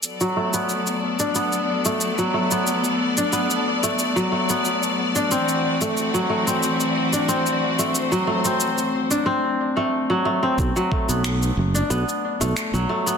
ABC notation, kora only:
X:1
M:4/4
L:1/16
Q:1/4=91
K:Bphr
V:1 name="Kora"
z F, A, B, z3 D B, z2 A, z F, A, B, | z3 D B, z2 A, z F, A, B, z3 D | C z2 A, z F, A, C z3 D C z2 A, | z F, A, C z3 D C z2 A, z F, A, C |
z F, A, B, z3 D B, z2 A, z F, A, B, |]